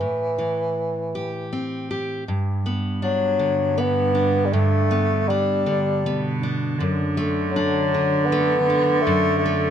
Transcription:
Already playing: E3
0.01 A2
0.38 E3
1.15 G4
1.53 C4
1.91 G4
2.28 G2
2.66 B3
3.02 F#3 D4
3.39 D3
3.78 B3
4.15 D4
4.45 G3
4.53 G2 A3
4.91 B3
5.28 G3 D4
5.66 D3
6.05 B2 B3
6.43 D4
6.78 F#2 D3
7.17 A3
7.52 F#3
7.56 D4
7.94 D3
8.25 B3
8.32 A3
8.70 D4
9.01 A3
9.07 F#2
9.39 A3
9.46 A3

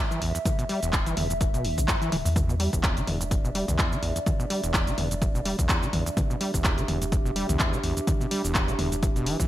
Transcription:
Already playing: E5
0.11 E3, shaker
0.22 A1 E2, open hi-hat
0.35 E2, closed hi-hat, shaker
0.45 E2, kick, closed hi-hat, mid tom, shaker
0.59 B2, closed hi-hat, shaker
0.69 G3, open hi-hat
0.83 E1 E2, closed hi-hat, shaker
0.93 kick, clap, closed hi-hat, shaker
1.06 E3, closed hi-hat, shaker
1.17 E1 E2, open hi-hat, mid tom
1.30 E2, closed hi-hat, shaker
1.41 E2, kick, closed hi-hat, shaker
1.54 B2, closed hi-hat, shaker
1.64 D2, open hi-hat
1.78 B1 E3, kick, closed hi-hat, shaker
1.88 E2, kick, clap, closed hi-hat, shaker
2.02 E3, closed hi-hat, shaker
2.12 D1 E3, open hi-hat, mid tom
2.25 E2, open hi-hat, shaker
2.36 E2 D4 D5, kick, closed hi-hat, mid tom, shaker
2.49 B2, shaker
2.60 G3, open hi-hat
2.73 E1 E2, kick, closed hi-hat, shaker
2.83 kick, clap, closed hi-hat, shaker
2.97 E3, closed hi-hat, shaker
3.07 E1 E2, open hi-hat, mid tom
3.21 E2, closed hi-hat, shaker
3.31 E2, kick, closed hi-hat, shaker
3.44 B2, shaker
3.55 G3, open hi-hat
3.68 B1 E2, closed hi-hat, mid tom, shaker
3.79 kick, clap, closed hi-hat, shaker
3.92 E3, shaker
4.03 A1 E2, open hi-hat
4.16 E2, closed hi-hat, shaker
4.26 E2, kick, closed hi-hat, mid tom, shaker
4.40 B2, shaker
4.50 G3, open hi-hat
4.63 E1 E2, closed hi-hat, shaker
4.74 kick, clap, closed hi-hat, shaker
4.87 E3, closed hi-hat, shaker
4.98 E1 E2, open hi-hat, mid tom
5.11 E2, closed hi-hat, shaker
5.22 E2, kick, closed hi-hat, shaker
5.35 B2, shaker
5.45 G3, open hi-hat
5.59 B1 E2, kick, closed hi-hat, shaker
5.69 kick, clap, closed hi-hat, shaker
5.83 E3, shaker
5.93 A1 E2, open hi-hat, mid tom
6.06 E2, closed hi-hat, shaker
6.17 E2 G4, kick, closed hi-hat, mid tom, shaker
6.30 B2, shaker
6.41 G3, open hi-hat
6.54 E1 E2, kick, closed hi-hat, shaker
6.64 kick, clap, closed hi-hat, shaker
6.78 E3, closed hi-hat, shaker
6.88 E1 E2, open hi-hat, mid tom
7.02 E2, closed hi-hat, shaker
7.12 E2, kick, closed hi-hat, shaker
7.25 B2, shaker
7.36 G3, open hi-hat
7.49 B1 E2, closed hi-hat, mid tom, shaker
7.59 kick, clap, closed hi-hat, shaker
7.73 E3, shaker
7.84 A1 E2, open hi-hat
7.97 E2, closed hi-hat, shaker
8.07 E2, kick, closed hi-hat, mid tom, shaker
8.21 B2, shaker
8.31 G3, open hi-hat
8.44 E1 E2, closed hi-hat, shaker
8.55 kick, clap, closed hi-hat, shaker
8.68 E3, closed hi-hat, shaker
8.79 E1 E2, open hi-hat, mid tom
8.92 E2, closed hi-hat, shaker
9.03 E2, kick, closed hi-hat, shaker
9.16 B2, closed hi-hat, shaker
9.26 E3, open hi-hat
9.40 B1 E3, kick, closed hi-hat, shaker

